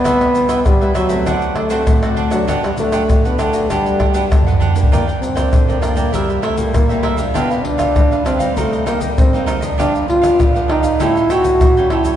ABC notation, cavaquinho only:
X:1
M:4/4
L:1/16
Q:1/4=98
K:G
V:1 name="Cavaquinho"
[EBce] [Bce]2 [EBce] z [Bce] [EBce] [Bce] [Dcdf]2 [Dcdf] [Dcdf] z [cdf] [Dcdf] [cdf] | [DGBf] [GBf]2 [DGBf] z [GBf] [DGBf] [Gf] [DGBf]2 [DGBf] [DGBf] z [GBf] [DGBf] [GBf] | [K:Gm] [FBdg] [Bdg] z [Bdg]2 [Bdg] [FBdg] [Bdg] [=EBc=e] [Bce] [EBce] z2 [Bce] [EBce] [Bce] | [DG=Bf] [GBf] z [GBf]2 [GBf] [DGBf] [GBf] [E_Bce] [Bce] [EBce] z2 [Bce] [EBce] [Bce] |
[DG=Bf] [Bf] z [GBf]2 [GBf] [DGBf] [GBf] [=EA^cg] [Acg] [EAcg] z2 [Acg] [EAcg] [Acg] |]